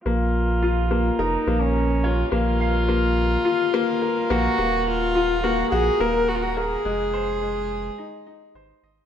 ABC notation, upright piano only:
X:1
M:4/4
L:1/8
Q:1/4=106
K:Bbm
V:1 name="Upright piano"
B, z F B, B B, z d | B, f B, z F B, B B, | B, z F B, G B, z B | A, c A, z E E c e |]